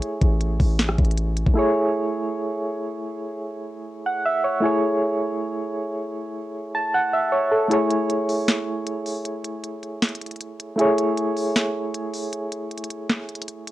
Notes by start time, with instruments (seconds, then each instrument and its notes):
Already playing: synth keys A3 E4 G#4 C#5
0.02 closed hi-hat
0.21 808-style bass A1, kick, closed hi-hat
0.41 closed hi-hat
0.60 808-style bass A1, kick, open hi-hat
0.79 snare, closed hi-hat
0.89 cross-stick
0.98 808-style bass A1, kick, closed hi-hat
1.05 closed hi-hat
1.11 closed hi-hat
1.17 closed hi-hat
1.37 closed hi-hat
1.46 808-style bass A1, kick
1.54 synth keys A3 E4 G#4
1.59 synth keys C#5
4.06 synth keys F#5
4.25 synth keys E5
4.44 synth keys C#5
4.60 synth keys A3 E4 G#4
4.65 synth keys C#5
6.75 synth keys A5
6.94 synth keys F#5
7.13 synth keys E5
7.32 synth keys C#5
7.52 synth keys A4
7.68 synth keys A3 E4 G#4, closed hi-hat
7.73 synth keys C#5
7.91 closed hi-hat
8.10 closed hi-hat
8.29 open hi-hat
8.48 snare, closed hi-hat
8.87 closed hi-hat
9.06 open hi-hat
9.25 closed hi-hat
9.44 closed hi-hat
9.64 closed hi-hat
9.83 closed hi-hat
10.02 snare, closed hi-hat
10.09 closed hi-hat
10.15 closed hi-hat
10.21 closed hi-hat
10.26 closed hi-hat
10.31 closed hi-hat
10.36 closed hi-hat
10.41 closed hi-hat
10.60 closed hi-hat
10.76 synth keys A3 E4 G#4, closed hi-hat
10.81 synth keys C#5
10.98 closed hi-hat
11.17 closed hi-hat
11.37 open hi-hat
11.56 snare, closed hi-hat
11.94 closed hi-hat
12.14 open hi-hat
12.33 closed hi-hat
12.52 closed hi-hat
12.71 closed hi-hat
12.78 closed hi-hat
12.84 closed hi-hat
12.90 closed hi-hat
13.10 snare, closed hi-hat
13.29 closed hi-hat
13.35 closed hi-hat
13.42 closed hi-hat
13.48 closed hi-hat
13.67 closed hi-hat